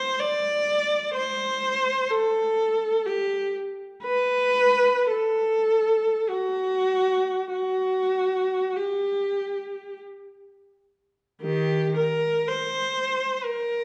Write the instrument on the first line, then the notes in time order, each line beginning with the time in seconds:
viola
Already playing: C5
0.19 D5
1.14 C5
2.10 A4
3.05 G4
4.03 B4
5.11 A4
6.29 F#4
7.52 F#4
8.76 G4
11.42 D#3 G4
11.97 A#4
12.47 C5
13.44 A#4